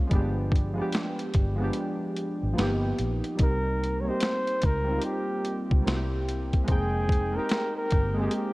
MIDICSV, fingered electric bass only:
0, 0, Header, 1, 2, 480
1, 0, Start_track
1, 0, Tempo, 821918
1, 64, Time_signature, 4, 2, 24, 8
1, 4982, End_track
2, 0, Start_track
2, 0, Title_t, "Fingered electric bass"
2, 0, Program_c, 0, 33
2, 68, Note_on_c, 0, 31, 101
2, 467, Note_off_c, 0, 31, 0
2, 790, Note_on_c, 0, 31, 92
2, 988, Note_off_c, 0, 31, 0
2, 1420, Note_on_c, 0, 32, 88
2, 1492, Note_off_c, 0, 32, 0
2, 1507, Note_on_c, 0, 31, 90
2, 1706, Note_off_c, 0, 31, 0
2, 1749, Note_on_c, 0, 34, 78
2, 1872, Note_off_c, 0, 34, 0
2, 1987, Note_on_c, 0, 36, 104
2, 2386, Note_off_c, 0, 36, 0
2, 2708, Note_on_c, 0, 37, 94
2, 2906, Note_off_c, 0, 37, 0
2, 3340, Note_on_c, 0, 37, 88
2, 3413, Note_off_c, 0, 37, 0
2, 3425, Note_on_c, 0, 36, 82
2, 3906, Note_on_c, 0, 29, 103
2, 3915, Note_off_c, 0, 36, 0
2, 4306, Note_off_c, 0, 29, 0
2, 4629, Note_on_c, 0, 31, 87
2, 4828, Note_off_c, 0, 31, 0
2, 4982, End_track
0, 0, End_of_file